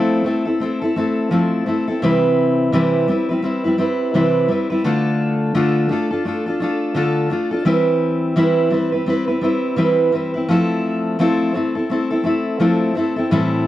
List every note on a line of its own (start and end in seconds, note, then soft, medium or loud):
0.00 0.25 F3 medium
0.00 0.23 A3 medium
0.00 0.25 C4 medium
0.00 0.26 E4 medium
0.00 0.26 A4 medium
0.24 0.46 A3 medium
0.24 0.47 C4 medium
0.24 0.46 E4 medium
0.24 0.44 A4 medium
0.45 0.60 C4 soft
0.45 0.61 E4 soft
0.45 0.60 A4 soft
0.60 0.82 A3 medium
0.60 0.82 C4 medium
0.60 0.82 E4 medium
0.60 0.80 A4 medium
0.82 0.96 C4 soft
0.82 0.97 E4 soft
0.82 0.96 A4 soft
0.96 1.30 A3 medium
0.96 1.31 C4 medium
0.96 1.31 E4 medium
0.96 1.32 A4 medium
1.31 1.67 F3 medium
1.31 1.65 A3 medium
1.31 1.66 C4 medium
1.31 1.67 E4 medium
1.31 1.68 A4 medium
1.66 1.88 A3 medium
1.66 1.88 C4 medium
1.66 1.88 E4 medium
1.66 1.86 A4 medium
1.88 2.02 C4 soft
1.88 2.03 E4 soft
1.88 2.02 A4 soft
2.02 2.71 C3 medium
2.02 2.72 E3 medium
2.02 2.72 G3 medium
2.02 2.73 C4 medium
2.02 2.73 E4 medium
2.02 2.74 B4 medium
2.72 3.08 C3 medium
2.72 3.08 E3 medium
2.72 3.07 G3 medium
2.72 3.08 C4 medium
2.72 3.09 E4 medium
2.72 3.09 B4 medium
3.08 3.29 G3 medium
3.08 3.30 C4 medium
3.08 3.29 E4 medium
3.08 3.28 B4 medium
3.29 3.43 C4 soft
3.29 3.44 E4 soft
3.29 3.43 B4 soft
3.33 3.41 G3 soft
3.42 3.64 G3 medium
3.42 3.65 C4 medium
3.42 3.64 E4 medium
3.42 3.63 B4 medium
3.64 3.77 G3 soft
3.64 3.78 C4 soft
3.64 3.79 E4 soft
3.64 3.78 B4 soft
3.78 4.14 G3 medium
3.78 4.14 C4 medium
3.78 4.15 E4 medium
3.78 4.15 B4 medium
4.14 4.49 C3 medium
4.14 4.49 E3 medium
4.14 4.47 G3 medium
4.14 4.49 C4 medium
4.14 4.50 E4 medium
4.14 4.50 B4 medium
4.48 4.70 G3 medium
4.48 4.71 C4 medium
4.48 4.71 E4 medium
4.48 4.69 B4 medium
4.70 4.84 G3 soft
4.70 4.85 C4 soft
4.70 4.85 E4 soft
4.70 4.84 B4 medium
4.84 5.53 D3 medium
4.84 5.54 A3 medium
4.84 5.55 D4 medium
4.84 5.55 F4 medium
4.84 5.56 A4 medium
5.55 5.90 D3 medium
5.55 5.88 A3 medium
5.55 5.90 D4 medium
5.55 5.91 F4 medium
5.55 5.91 A4 medium
5.89 6.11 A3 medium
5.89 6.12 D4 medium
5.89 6.11 F4 medium
5.89 6.09 A4 medium
6.11 6.25 D4 soft
6.11 6.26 F4 soft
6.11 6.25 A4 soft
6.25 6.47 A3 medium
6.25 6.47 D4 medium
6.25 6.46 F4 medium
6.25 6.45 A4 medium
6.46 6.61 D4 soft
6.46 6.61 F4 soft
6.46 6.61 A4 soft
6.60 6.94 A3 medium
6.60 6.95 D4 medium
6.60 6.95 F4 medium
6.60 6.96 A4 medium
6.95 7.31 D3 medium
6.95 7.29 A3 medium
6.95 7.30 D4 medium
6.95 7.31 F4 medium
6.95 7.32 A4 medium
7.30 7.52 A3 medium
7.30 7.53 D4 medium
7.30 7.51 F4 medium
7.30 7.50 A4 medium
7.51 7.66 D4 soft
7.51 7.66 F4 soft
7.51 7.66 A4 soft
7.65 8.35 E3 medium
7.65 8.35 G3 medium
7.65 8.37 C4 medium
7.65 8.37 E4 medium
7.65 8.37 B4 medium
8.36 8.72 E3 medium
8.36 8.69 G3 medium
8.36 8.71 C4 medium
8.36 8.71 E4 medium
8.36 8.73 B4 medium
8.70 8.93 G3 medium
8.70 8.93 C4 medium
8.70 8.93 E4 medium
8.70 8.91 B4 medium
8.92 9.06 C4 soft
8.92 9.08 E4 soft
8.92 9.07 B4 soft
9.06 9.28 G3 medium
9.06 9.29 C4 medium
9.06 9.28 E4 medium
9.06 9.26 B4 medium
9.27 9.41 C4 soft
9.27 9.43 E4 soft
9.27 9.42 B4 soft
9.41 9.76 G3 medium
9.41 9.77 C4 medium
9.41 9.77 E4 medium
9.41 9.78 B4 medium
9.76 10.13 E3 medium
9.76 10.11 G3 medium
9.76 10.12 C4 medium
9.76 10.13 E4 medium
9.76 10.14 B4 medium
10.12 10.34 G3 medium
10.12 10.35 C4 medium
10.12 10.35 E4 medium
10.12 10.33 B4 medium
10.34 10.48 C4 soft
10.34 10.49 E4 soft
10.34 10.49 B4 soft
10.48 11.18 F3 medium
10.48 11.19 A3 medium
10.48 11.20 C4 medium
10.48 11.20 E4 medium
10.48 11.21 A4 medium
11.19 11.54 F3 medium
11.19 11.53 A3 medium
11.19 11.54 C4 medium
11.19 11.55 E4 medium
11.19 11.56 A4 medium
11.54 11.76 A3 medium
11.54 11.76 C4 medium
11.54 11.76 E4 medium
11.54 11.74 A4 medium
11.75 11.90 C4 soft
11.75 11.91 E4 soft
11.75 11.90 A4 soft
11.90 12.11 A3 medium
11.90 12.12 C4 medium
11.90 12.11 E4 medium
11.90 12.09 A4 medium
12.11 12.23 C4 soft
12.11 12.25 E4 soft
12.11 12.25 A4 medium
12.24 12.59 A3 medium
12.24 12.60 C4 medium
12.24 12.60 E4 medium
12.24 12.61 A4 medium
12.60 12.95 F3 medium
12.60 12.94 A3 medium
12.60 12.95 C4 medium
12.60 12.96 E4 medium
12.60 12.96 A4 medium
12.95 13.17 A3 medium
12.95 13.17 C4 medium
12.95 13.17 E4 medium
12.95 13.15 A4 medium
13.16 13.31 C4 soft
13.16 13.32 E4 soft
13.16 13.31 A4 soft
13.31 13.67 A2 medium
13.31 13.67 E3 medium
13.31 13.67 G3 medium
13.31 13.67 C4 medium
13.31 13.67 E4 loud
13.31 13.67 A4 medium